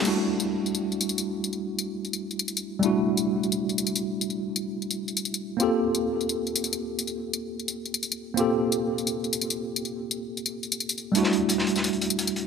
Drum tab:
CC |x---------------|----------------|----------------|----------------|
HH |----------------|----------------|----------------|----------------|
TB |x---x--xx-xxxx--|xx--x--xx-xxxx--|x---x--xx-xxxx--|xx--x--xx-xxxx--|
SD |----------------|----------------|----------------|----------------|

CC |----------------|----------------|----------------|----------------|
HH |----------------|----------------|----------------|----------------|
TB |x---x--xx-xxxx--|xx--x--xx-xxxx--|x---x--xx-xxxx--|xx--x--xx-xxxxx-|
SD |----------------|----------------|----------------|----------------|

CC |----------------|
HH |x-x-x-x-xxx-xxx-|
TB |x---x--xx-xxxx--|
SD |-o---o-o--------|